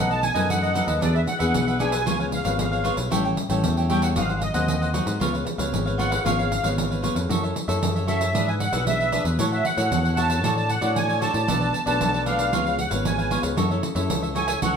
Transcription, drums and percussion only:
0.11 pandeiro soft
0.23 pandeiro medium
0.35 pandeiro medium
0.50 pandeiro medium
0.63 pandeiro soft
0.75 pandeiro medium
0.88 pandeiro medium
1.02 pandeiro medium
1.16 pandeiro soft
1.27 pandeiro medium
1.40 pandeiro medium
1.54 pandeiro medium
1.68 pandeiro soft
1.80 pandeiro medium
1.92 pandeiro medium
2.07 pandeiro medium
2.20 pandeiro soft
2.32 pandeiro medium
2.45 pandeiro medium
2.59 pandeiro medium
2.73 pandeiro soft
2.85 pandeiro medium
2.97 pandeiro medium
3.12 pandeiro medium
3.25 pandeiro soft
3.37 pandeiro medium
3.50 pandeiro medium
3.64 pandeiro medium
3.77 pandeiro soft
3.90 pandeiro medium
4.02 pandeiro medium
4.16 pandeiro medium
4.29 pandeiro soft
4.41 pandeiro medium
4.54 pandeiro medium
4.68 pandeiro medium
4.82 pandeiro soft
4.94 pandeiro medium
5.07 pandeiro medium
5.21 pandeiro medium
5.35 pandeiro soft
5.47 pandeiro medium
5.59 pandeiro medium
5.74 pandeiro medium
5.87 pandeiro soft
5.99 pandeiro medium
6.12 pandeiro medium
6.26 pandeiro medium
6.39 pandeiro soft
6.52 pandeiro medium
6.64 pandeiro medium
6.78 pandeiro medium
6.92 pandeiro soft
7.04 pandeiro medium
7.16 pandeiro medium
7.30 pandeiro medium
7.44 pandeiro soft
7.56 pandeiro medium
7.69 pandeiro medium
7.83 pandeiro medium
7.96 pandeiro soft
8.08 pandeiro medium
8.21 pandeiro medium
8.35 pandeiro medium
8.48 pandeiro soft
8.60 pandeiro medium
8.73 pandeiro medium
8.87 pandeiro medium
9.00 pandeiro soft
9.12 pandeiro medium
9.25 pandeiro medium
9.39 pandeiro medium
9.53 pandeiro soft
9.65 pandeiro medium
9.78 pandeiro medium
9.92 pandeiro medium
10.05 pandeiro soft
10.17 pandeiro medium
10.30 pandeiro medium
10.44 pandeiro medium
10.58 pandeiro soft
10.69 pandeiro medium
10.82 pandeiro medium
10.96 pandeiro medium
11.09 pandeiro soft
11.22 pandeiro medium
11.34 pandeiro medium
11.48 pandeiro medium
11.62 pandeiro soft
11.74 pandeiro medium
11.87 pandeiro medium
12.01 pandeiro medium
12.14 pandeiro soft
12.26 pandeiro medium
12.39 pandeiro medium
12.53 pandeiro medium
12.66 pandeiro soft
12.79 pandeiro medium
12.91 pandeiro medium
13.05 pandeiro medium
13.19 pandeiro soft
13.31 pandeiro medium
13.43 pandeiro medium
13.57 pandeiro medium
13.71 pandeiro soft
13.83 pandeiro medium
13.96 pandeiro medium
14.10 pandeiro medium
14.23 pandeiro soft
14.36 pandeiro medium
14.48 pandeiro medium
14.62 pandeiro medium

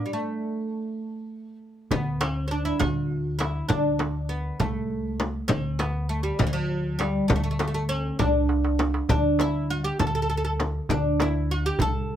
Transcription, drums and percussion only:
1.91 darbuka dum medium
1.91 frame drum medium
2.21 darbuka tek medium
2.21 frame drum medium
2.51 darbuka ka soft
2.80 frame drum medium
2.80 darbuka dum medium
3.11 darbuka ka soft
3.40 darbuka tek medium
3.40 frame drum medium
3.69 frame drum medium
3.69 darbuka dum medium
3.99 darbuka tek medium
3.99 frame drum medium
4.30 darbuka ka soft
4.60 frame drum medium
4.60 darbuka dum medium
4.90 darbuka ka soft
5.20 darbuka tek medium
5.20 frame drum medium
5.49 frame drum loud
5.49 darbuka dum medium
5.79 darbuka tek medium
5.79 frame drum medium
6.10 darbuka ka soft
6.39 frame drum medium
6.39 darbuka dum medium
6.71 darbuka ka soft
7.00 darbuka tek medium
7.00 frame drum medium
7.30 frame drum loud
7.30 darbuka dum medium
7.59 darbuka tek medium
7.59 frame drum medium
8.19 frame drum medium
8.19 darbuka dum medium
8.35 darbuka ka soft
8.49 darbuka tek medium
8.65 darbuka ka medium
8.79 darbuka tek medium
8.79 frame drum medium
8.94 darbuka ka medium
9.09 darbuka dum medium
9.09 frame drum loud
9.39 darbuka tek medium
9.39 frame drum medium
9.70 darbuka ka soft
10.00 frame drum medium
10.00 darbuka dum medium
10.30 darbuka ka soft
10.60 darbuka tek medium
10.60 frame drum medium
10.89 darbuka dum medium
10.89 frame drum medium
11.20 darbuka tek medium
11.20 frame drum medium
11.49 darbuka ka soft
11.79 darbuka dum loud
11.79 frame drum medium
12.09 darbuka ka soft

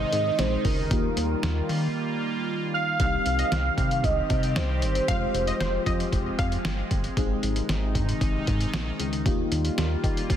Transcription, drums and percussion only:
0.13 closed hi-hat medium
0.39 snare loud
0.39 closed hi-hat medium
0.65 kick loud
0.65 open hi-hat medium
0.91 kick loud
0.91 closed hi-hat medium
1.17 closed hi-hat medium
1.43 snare loud
1.43 closed hi-hat medium
1.69 open hi-hat medium
3.00 kick loud
3.00 closed hi-hat medium
3.26 closed hi-hat medium
3.39 closed hi-hat medium
3.52 snare loud
3.52 closed hi-hat medium
3.78 kick medium
3.78 closed hi-hat medium
3.91 closed hi-hat medium
4.04 kick medium
4.04 closed hi-hat medium
4.30 kick loud
4.30 closed hi-hat medium
4.43 closed hi-hat medium
4.56 snare loud
4.56 closed hi-hat medium
4.82 closed hi-hat medium
4.95 closed hi-hat medium
5.08 kick loud
5.08 closed hi-hat medium
5.34 closed hi-hat medium
5.47 closed hi-hat medium
5.61 snare loud
5.61 closed hi-hat medium
5.86 kick medium
5.86 closed hi-hat medium
6.00 closed hi-hat medium
6.12 kick medium
6.12 closed hi-hat medium
6.39 kick loud
6.39 closed hi-hat medium
6.52 closed hi-hat medium
6.65 snare loud
6.65 closed hi-hat medium
6.91 kick loud
6.91 closed hi-hat medium
7.04 closed hi-hat medium
7.17 kick loud
7.17 closed hi-hat medium
7.43 closed hi-hat medium
7.56 closed hi-hat medium
7.69 snare loud
7.69 closed hi-hat medium
7.95 kick medium
7.95 closed hi-hat medium
8.09 closed hi-hat medium
8.21 kick medium
8.21 closed hi-hat medium
8.47 kick loud
8.47 closed hi-hat medium
8.61 closed hi-hat medium
8.74 snare loud
8.74 closed hi-hat medium
9.00 closed hi-hat medium
9.13 closed hi-hat soft
9.26 kick loud
9.26 closed hi-hat medium
9.52 closed hi-hat medium
9.65 closed hi-hat medium
9.78 snare loud
9.78 closed hi-hat medium
10.04 kick medium
10.04 closed hi-hat medium
10.17 closed hi-hat medium
10.30 kick medium
10.30 closed hi-hat medium

